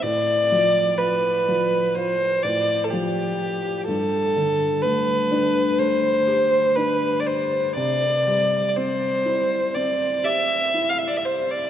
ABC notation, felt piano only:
X:1
M:4/4
L:1/8
Q:1/4=62
K:Ddor
V:1 name="Felt piano"
A,, F, F F, F A,, F,2 | G,, D, A, D A, G D2 | C, G, C E C G E2 |]